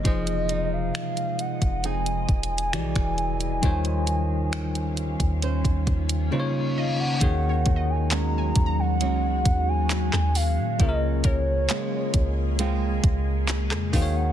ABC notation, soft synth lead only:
X:1
M:4/4
L:1/16
Q:1/4=67
K:Ebdor
V:1 name="Soft synth lead"
e3 f3 g2 a8- | a12 z2 f g- | g3 a b3 g4 a3 f2 | e2 d6 z6 f g |]